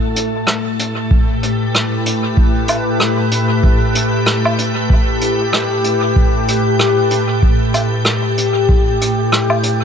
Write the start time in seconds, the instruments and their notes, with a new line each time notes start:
Already playing: ambient pad A2 A3
0.16 closed hi-hat
0.47 cross-stick
0.57 ambient pad G4
0.75 ambient pad B4
0.79 closed hi-hat
1.11 kick
1.43 closed hi-hat
1.75 cross-stick
2.06 closed hi-hat
2.37 kick
2.68 closed hi-hat, low woodblock
3.00 cross-stick
3.31 closed hi-hat
3.64 kick
3.95 closed hi-hat
4.26 cross-stick
4.45 low woodblock
4.58 closed hi-hat
4.90 kick
5.21 closed hi-hat
5.53 cross-stick
5.84 closed hi-hat
6.16 kick
6.48 closed hi-hat
6.79 cross-stick
7.11 closed hi-hat
7.43 kick
7.74 closed hi-hat, low woodblock
8.05 cross-stick
8.38 closed hi-hat
8.69 kick
9.01 closed hi-hat
9.32 cross-stick
9.50 low woodblock
9.63 closed hi-hat